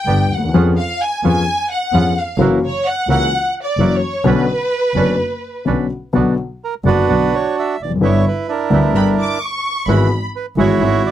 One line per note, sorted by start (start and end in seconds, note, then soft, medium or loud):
0.00 0.31 G5 medium
0.06 0.26 G1 medium
0.06 0.27 G1 soft
0.06 0.27 G2 soft
0.06 0.27 D3 soft
0.06 0.27 G3 soft
0.06 0.26 B3 soft
0.06 0.27 B3 soft
0.06 0.27 D4 soft
0.06 0.27 G4 soft
0.29 0.52 D#2 medium
0.33 0.55 F#5 medium
0.38 0.43 D2 soft
0.44 0.49 D#2 medium
0.49 0.54 E2 medium
0.53 0.73 F2 medium
0.53 0.74 F2 medium
0.53 0.74 F3 medium
0.53 0.73 B3 medium
0.53 0.74 B3 medium
0.53 0.73 C#4 medium
0.53 0.74 C#4 medium
0.53 0.73 F4 medium
0.53 0.74 G#4 medium
0.78 0.99 F5 medium
1.02 1.24 G#5 medium
1.23 1.43 F2 medium
1.23 1.43 F2 soft
1.23 1.44 F3 soft
1.23 1.43 B3 soft
1.23 1.44 B3 soft
1.23 1.43 C#4 soft
1.23 1.44 C#4 soft
1.23 1.43 F4 medium
1.23 1.44 G#4 soft
1.23 1.68 G#5 medium
1.72 2.17 F#5 medium
1.92 2.12 F2 medium
1.92 2.13 F2 medium
1.92 2.13 F3 soft
1.92 2.12 B3 medium
1.92 2.13 B3 soft
1.92 2.13 C#4 soft
1.92 2.13 F4 medium
1.92 2.13 G#4 soft
2.19 2.40 F5 medium
2.38 2.58 F#1 medium
2.38 2.58 F#2 medium
2.38 2.58 E3 medium
2.38 2.58 F#3 medium
2.38 2.58 A#3 medium
2.38 2.59 A#3 medium
2.38 2.58 C#4 medium
2.38 2.59 E4 medium
2.38 2.59 F#4 medium
2.65 2.85 C#5 medium
2.87 3.09 F#5 medium
3.07 3.27 C#2 medium
3.07 3.28 C#2 soft
3.07 3.28 C#3 medium
3.07 3.28 E3 soft
3.07 3.28 A#3 soft
3.07 3.28 C#4 soft
3.07 3.29 E4 medium
3.07 3.28 F#4 soft
3.07 3.29 F#4 medium
3.07 3.53 F#5 loud
3.64 3.93 D5 medium
3.77 3.97 F#1 medium
3.77 3.98 F#2 medium
3.77 3.98 E3 soft
3.77 3.98 F#3 medium
3.77 3.98 A#3 soft
3.77 3.99 C#4 soft
3.77 3.99 E4 soft
3.77 3.99 F#4 soft
3.96 4.26 C#5 medium
4.24 4.45 B1 medium
4.24 4.45 B2 medium
4.24 4.45 D3 medium
4.24 4.45 B3 medium
4.24 4.45 C#4 medium
4.24 4.45 D4 medium
4.24 4.45 F#4 medium
4.24 4.45 B4 medium
4.24 5.68 B4 medium
4.94 5.15 F#1 soft
4.94 5.15 F#2 soft
4.94 5.15 D3 soft
4.94 5.15 B3 soft
4.94 5.15 C#4 soft
4.94 5.16 C#4 soft
4.94 5.16 D4 soft
4.94 5.15 F#4 soft
4.94 5.16 B4 medium
5.65 5.86 B1 soft
5.65 5.87 B1 medium
5.65 5.86 B2 soft
5.65 5.86 D3 soft
5.65 5.86 B3 soft
5.65 5.86 C#4 soft
5.65 5.87 C#4 soft
5.65 5.87 D4 soft
5.65 5.86 F#4 soft
5.65 5.87 B4 soft
6.13 6.34 B1 medium
6.13 6.34 B2 medium
6.13 6.34 D3 medium
6.13 6.34 F#3 soft
6.13 6.34 B3 medium
6.13 6.35 D4 medium
6.13 6.34 F#4 medium
6.13 6.35 F#4 medium
6.64 6.74 A#4 medium
6.84 7.05 F#1 medium
6.84 7.05 F#2 medium
6.84 7.05 D3 medium
6.84 7.05 F#3 soft
6.84 7.05 B3 soft
6.84 7.05 B3 medium
6.84 7.05 D4 medium
6.84 7.76 D4 medium
6.84 7.05 F#4 medium
6.84 7.76 F#4 medium
6.84 7.35 B4 medium
7.08 7.29 B1 soft
7.08 7.29 B2 soft
7.08 7.29 D3 soft
7.08 7.29 F#3 soft
7.08 7.29 B3 soft
7.08 7.29 D4 soft
7.08 7.29 F#4 soft
7.35 7.56 C#5 medium
7.59 7.82 E5 medium
7.80 8.02 F1 soft
7.80 7.92 D5 medium
7.85 7.91 E2 soft
7.91 7.97 F2 soft
7.96 8.02 F#2 medium
8.01 8.21 G1 medium
8.01 8.22 G1 medium
8.01 8.21 G2 medium
8.01 8.21 D3 medium
8.01 8.21 G3 medium
8.01 8.21 B3 medium
8.01 8.22 B3 medium
8.01 8.22 E4 medium
8.01 8.47 E4 medium
8.01 8.22 E4 medium
8.01 8.22 G4 medium
8.01 8.25 C#5 medium
8.28 8.51 B4 medium
8.49 9.38 D4 soft
8.49 9.38 E4 soft
8.49 9.39 A#4 medium
8.70 8.91 D2 medium
8.70 8.92 D2 medium
8.70 8.91 D3 medium
8.70 8.91 G3 soft
8.70 8.91 B3 medium
8.70 8.92 B3 medium
8.70 8.91 E4 medium
8.70 8.92 E4 medium
8.70 8.92 G4 medium
8.93 9.14 G1 soft
8.93 9.15 G1 medium
8.93 9.14 G2 soft
8.93 9.14 D3 soft
8.93 9.14 G3 soft
8.93 9.14 B3 soft
8.93 9.16 B3 soft
8.93 9.14 E4 soft
8.93 9.15 E4 soft
8.93 9.16 G4 medium
8.93 9.06 B5 medium
9.20 9.41 D6 medium
9.43 9.89 C#6 medium
9.87 10.07 G#1 medium
9.87 10.08 G#1 medium
9.87 10.08 G#2 medium
9.87 10.08 E3 medium
9.87 10.08 G#3 medium
9.87 10.08 B3 medium
9.87 10.08 E4 medium
9.87 10.08 F#4 medium
9.87 10.23 B5 medium
10.36 10.46 B4 medium
10.56 10.77 G#1 medium
10.56 10.77 G#2 medium
10.56 10.77 E3 medium
10.56 10.77 G#3 medium
10.56 10.77 B3 soft
10.56 10.78 E4 medium
10.56 11.11 E4 medium
10.56 10.77 F#4 medium
10.56 10.78 F#4 medium
10.56 11.11 F#4 medium
10.56 11.02 C#5 medium
10.79 11.00 G#1 medium
10.79 11.01 G#1 soft
10.79 11.01 G#2 soft
10.79 11.01 E3 soft
10.79 11.00 G#3 soft
10.79 11.01 G#3 soft
10.79 11.01 B3 soft
10.79 11.00 E4 soft
10.79 11.01 F#4 medium
10.79 11.01 F#4 soft
11.06 11.11 D5 medium